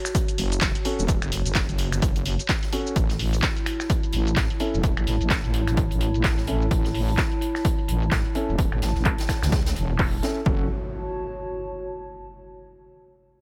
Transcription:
Already playing: F#4 C#5 A5
0.05 finger snap, snare, shaker
0.15 kick, closed hi-hat, shaker
0.28 closed hi-hat, shaker
0.38 F#1, closed hi-hat, open hi-hat
0.52 closed hi-hat, shaker
0.61 F#1, kick, snare, clap, closed hi-hat, shaker
0.75 closed hi-hat, shaker
0.85 C#4 F#4 A4, closed hi-hat, open hi-hat
0.99 E1, shaker
1.08 kick, closed hi-hat, shaker
1.22 F#1, finger snap, closed hi-hat, shaker
1.32 F#1, snare, closed hi-hat, open hi-hat
1.46 F#1, closed hi-hat, shaker
1.55 kick, snare, clap, closed hi-hat, shaker
1.69 F#1, closed hi-hat, shaker
1.78 closed hi-hat, open hi-hat
1.92 finger snap, closed hi-hat, shaker
2.02 F#1, kick, closed hi-hat, shaker
2.15 closed hi-hat, shaker
2.25 closed hi-hat, open hi-hat
2.39 closed hi-hat, shaker
2.49 kick, snare, clap, closed hi-hat, shaker
2.63 snare, closed hi-hat, shaker
2.72 C#4 F#4 A4, closed hi-hat, open hi-hat
2.87 shaker
2.96 A1 E4, kick, closed hi-hat, shaker
3.10 C#5, snare, closed hi-hat, shaker
3.19 open hi-hat
3.33 closed hi-hat, shaker
3.42 kick, snare, clap, closed hi-hat, shaker
3.57 A5, closed hi-hat, shaker
3.66 finger snap, closed hi-hat, open hi-hat
3.80 finger snap, snare, shaker
3.90 kick, closed hi-hat, shaker
4.03 closed hi-hat, shaker
4.12 A1, closed hi-hat, open hi-hat
4.27 closed hi-hat, shaker
4.36 A1, kick, snare, clap, closed hi-hat, shaker
4.50 closed hi-hat, shaker
4.60 C#4 E4 A4, closed hi-hat, open hi-hat
4.74 E1, shaker
4.83 kick, closed hi-hat, shaker
4.97 A1, finger snap, closed hi-hat, shaker
5.07 A1, snare, closed hi-hat, open hi-hat
5.21 A1, closed hi-hat, shaker
5.30 kick, snare, clap, closed hi-hat, shaker
5.44 A1, closed hi-hat, shaker
5.53 closed hi-hat, open hi-hat
5.67 finger snap, closed hi-hat, shaker
5.77 kick, closed hi-hat, shaker
5.91 A1, closed hi-hat, shaker
6.01 closed hi-hat, open hi-hat
6.14 closed hi-hat, shaker
6.24 A1, kick, snare, clap, closed hi-hat, shaker
6.38 snare, closed hi-hat, shaker
6.47 C#4 E4 A4, closed hi-hat, open hi-hat
6.62 shaker
6.71 A1, kick, closed hi-hat, shaker
6.85 snare, closed hi-hat, shaker
6.94 open hi-hat
7.08 closed hi-hat, shaker
7.17 kick, snare, clap, closed hi-hat, shaker
7.32 closed hi-hat, shaker
7.41 closed hi-hat, open hi-hat
7.55 finger snap, snare, shaker
7.65 kick, closed hi-hat, shaker
7.78 closed hi-hat, shaker
7.88 A1, closed hi-hat, open hi-hat
8.02 closed hi-hat, shaker
8.11 A1, kick, snare, clap, closed hi-hat, shaker
8.25 closed hi-hat, shaker
8.35 C#4 E4 A4, closed hi-hat, open hi-hat
8.49 E1, shaker
8.58 kick, closed hi-hat, shaker
8.72 A1, finger snap, closed hi-hat, shaker
8.81 A1, snare, closed hi-hat, open hi-hat
8.95 A1, snare, closed hi-hat, shaker
9.05 kick, clap, closed hi-hat
9.18 snare, closed hi-hat
9.29 finger snap, kick, snare, closed hi-hat, open hi-hat
9.42 C#2, finger snap, snare, closed hi-hat, shaker
9.51 kick, snare, closed hi-hat
9.66 snare, closed hi-hat
9.76 E1, closed hi-hat, open hi-hat
9.89 closed hi-hat, shaker
9.99 kick, clap, closed hi-hat, open hi-hat
10.13 closed hi-hat
10.22 C#4 E4 A4, snare, closed hi-hat, open hi-hat
10.36 closed hi-hat, shaker
10.46 F#1 C#4 F#4 A4, kick, impact
10.54 C#5
10.62 A5

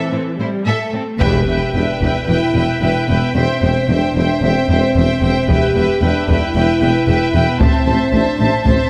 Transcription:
Already playing: E3 C4 A4
0.12 A2 C4 A4
0.39 A2 G3 E4 C5
0.66 A2 A3 A4 E5
0.93 A2 C4 A4
1.20 E1 E2 G4 B4 E5 G5, taiko, impact
1.46 E1 E2 B4 E5 G5
1.74 E1 E2 D4 B4 E5 G5
2.00 E1 E2 B4 E5 G5, taiko
2.15 E4
2.27 E1 E2 E4 B4 E5 G5
2.53 E1 E2 B4 E5 G5
2.81 E1 E2 B4 E5 G5
3.07 E1 E2 B3 B4 E5 G5
3.34 E1 E2 C4 C5 E5 G5
3.62 E1 E2 C5 E5 G5
3.86 E1 E2 D4 C5 E5
3.91 G5
4.15 E1 E2 C5 E5 G5
4.41 E1 E2 C4 C5 E5 G5
4.69 E1 E2 C5 E5 G5
4.95 E1 E2 C5 E5 G5
5.21 E1 E2 C5 E5 G5
5.48 E1 E2 G4 B4 E5 G5, taiko
5.75 E1 E2 B4 E5 G5
6.01 E1 E2 D4 B4 E5 G5
6.28 E1 E2 B4 E5 G5, taiko
6.44 E4
6.55 E1 E2 E4 B4 E5 G5
6.81 E1 E2 B4 E5 G5
7.07 E1 E2 B4 E5 G5
7.34 E1 E2 B3 B4 E5 G5
7.59 A1 A2 C4 C5 E5 A5, taiko
7.85 A1 A2 C5 E5 A5
8.12 A1 A2 D4 C5 E5 A5
8.39 A1 A2 C5 E5 A5
8.64 A1 A2 C4 C5 E5 A5, taiko

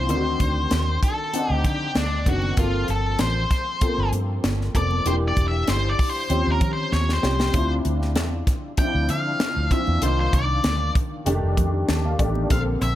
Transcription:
Already playing: E3 C4 D4 E4 F4 C5
0.09 D2 D#3 C4 D4 D#4, closed hi-hat, muted conga
0.16 F#4
0.40 D2, kick, closed hi-hat, muted conga
0.71 D#2, snare, closed hi-hat, high conga
1.03 A4, kick, closed hi-hat
1.33 C4 D4 D#4 F#5, closed hi-hat, muted conga
1.50 D2 G4
1.64 D3 G4, kick, closed hi-hat, muted conga, low conga
1.95 D2 D4, snare, closed hi-hat, high conga
2.26 F#1 D#3 C4 D4 F#4, kick, closed hi-hat, high conga
2.42 high conga
2.57 G1 F3 A#3 C4 F4 A4, kick, closed hi-hat, muted conga
2.88 G1 A4, closed hi-hat
3.19 A1 C5, snare, closed hi-hat, high conga
3.51 kick, snare, closed hi-hat
3.81 F3 A3 C4 A4, kick, closed hi-hat, muted conga
3.88 A#3
3.98 G1
4.12 G2, closed hi-hat, muted conga
4.44 G1, snare, closed hi-hat, high conga
4.61 snare
4.74 F1 F3 A#3 C4 A4 D5, kick, closed hi-hat, high conga
4.91 high conga
5.05 E1 E3 A#3 D4 G4 C5, closed hi-hat, muted conga
5.28 D5
5.36 E1, kick, closed hi-hat, muted conga
5.48 E5
5.68 G1 C5, snare, closed hi-hat, high conga
5.89 D5
5.99 kick, open hi-hat
6.10 C5
6.29 D#2 F3 C4 C#4 G4, closed hi-hat, muted conga
6.47 D#2
6.52 A#4
6.61 D#3, kick, closed hi-hat, muted conga, low conga
6.73 C5
6.92 D#2 C#5, snare, high conga
7.09 snare
7.13 C5
7.22 C2 F3 C4 C#4 G4, snare, high conga
7.39 snare, high conga
7.53 D2 C4 D4 E4 F4, kick, closed hi-hat, muted conga
7.85 D2, closed hi-hat, muted conga
8.02 snare
8.16 E2, snare, closed hi-hat, high conga
8.47 kick, snare, closed hi-hat
8.77 F3 C4 D4 E4 G5, kick, closed hi-hat, muted conga
8.85 F4
8.95 D2
9.09 D3 F5, closed hi-hat, muted conga
9.40 snare, closed hi-hat, high conga
9.57 D2
9.71 E3 C4 D4 F4 E5, kick, closed hi-hat, high conga
9.87 E2, high conga
10.02 C2 D#3 A#3 D4 F4 C5, closed hi-hat, muted conga
10.20 C5
10.33 C2 D5, kick, closed hi-hat, muted conga
10.64 D2, snare, closed hi-hat, high conga
10.95 kick, closed hi-hat
11.26 F1 D#3 A3 D4 G4, closed hi-hat, muted conga
11.43 F1
11.57 F2, kick, closed hi-hat, muted conga, low conga
11.89 D#2 A5, snare, closed hi-hat, high conga
12.05 F5
12.19 A1 D#3 A3 D4 G4 D5, kick, closed hi-hat, high conga
12.35 high conga
12.49 A#1 D3 A#3 C4 A4 F5, kick, closed hi-hat, muted conga
12.81 A#1 E5, closed hi-hat, muted conga

